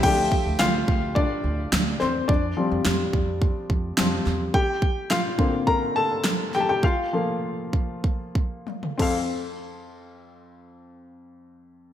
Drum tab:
CC |x---------------|----------------|----------------|--------------x-|
SD |----o-------o-o-|----o-------o-o-|----o-------o-o-|----------------|
T1 |----------------|----------------|----------------|------------o---|
T2 |----------------|----------------|----------------|-------------o--|
BD |o-o---o-o-------|o-----o-o-o-----|o-o---o-o-------|o-----o-o-o---o-|

CC |----------------|
SD |----------------|
T1 |----------------|
T2 |----------------|
BD |----------------|